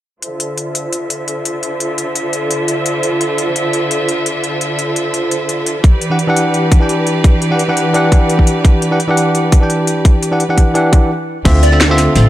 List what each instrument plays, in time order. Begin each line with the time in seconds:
0.22 string section D3 F4 A4 C5 E5, closed hi-hat
0.40 closed hi-hat
0.58 closed hi-hat
0.75 closed hi-hat
0.93 closed hi-hat
1.10 closed hi-hat
1.28 closed hi-hat
1.45 closed hi-hat
1.63 closed hi-hat
1.80 closed hi-hat
1.98 closed hi-hat
2.15 closed hi-hat
2.33 closed hi-hat
2.51 closed hi-hat
2.68 closed hi-hat
2.86 closed hi-hat
3.03 closed hi-hat
3.21 closed hi-hat
3.38 closed hi-hat
3.56 closed hi-hat
3.73 closed hi-hat
3.91 closed hi-hat
4.09 closed hi-hat
4.26 closed hi-hat
4.44 closed hi-hat
4.61 closed hi-hat
4.79 closed hi-hat
4.96 closed hi-hat
5.14 closed hi-hat
5.31 closed hi-hat
5.49 closed hi-hat
5.66 closed hi-hat
5.84 string section E3 G4 B4 D5, kick, closed hi-hat
6.01 closed hi-hat
6.10 tine electric piano E3 D4 G4 F#5
6.19 closed hi-hat
6.27 tine electric piano E3 D4 G4 F#5
6.36 closed hi-hat
6.54 closed hi-hat
6.72 kick, closed hi-hat
6.80 tine electric piano E3 D4 G4 G5
6.89 closed hi-hat
7.07 closed hi-hat
7.24 kick, closed hi-hat
7.42 closed hi-hat
7.50 tine electric piano E3 D4 G4 F#5
7.59 closed hi-hat
7.68 tine electric piano E3 D4 G4 F#5
7.77 closed hi-hat
7.93 tine electric piano E3 D4 G4 F#5, closed hi-hat
8.12 kick, closed hi-hat
8.29 closed hi-hat
8.39 kick
8.47 closed hi-hat
8.65 kick, closed hi-hat
8.82 closed hi-hat
8.91 tine electric piano E3 D4 G4 F#5
9.00 closed hi-hat
9.08 tine electric piano E3 D4 G4 F#5
9.17 closed hi-hat
9.35 closed hi-hat
9.52 kick, closed hi-hat
9.60 tine electric piano E3 D4 G4 G5
9.70 closed hi-hat
9.87 closed hi-hat
10.05 kick, closed hi-hat
10.23 closed hi-hat
10.31 tine electric piano E3 D4 G4 F#5
10.40 closed hi-hat
10.49 tine electric piano E3 D4 G4 F#5
10.58 kick, closed hi-hat
10.74 tine electric piano E3 D4 G4 F#5, closed hi-hat
10.93 kick, closed hi-hat
11.45 upright bass D2, tine electric piano D3 C4 F4 E5, string section C4 F4 A4, kick, closed hi-hat, crash
11.55 shaker
11.63 digital synth lead D5, closed hi-hat, shaker
11.71 tine electric piano D3 C4 F4 E5, snare, shaker
11.80 snare, closed hi-hat
11.88 tine electric piano D3 C4 F4 E5, snare
11.98 snare, closed hi-hat, shaker
12.15 upright bass A1, snare, closed hi-hat